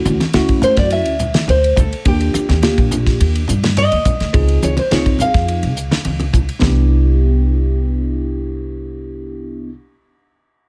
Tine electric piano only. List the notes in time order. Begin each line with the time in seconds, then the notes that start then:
Already playing: A3 C#4 E4 F#4
0.34 A3 C#4 E4 F#4
2.05 A#3 D4 F4 G4
2.62 A#3 D4 F4 G4
4.33 C4 D#4 F4 G#4
4.91 C4 D#4 F4 G#4
6.59 B3 D4 E4
6.64 G4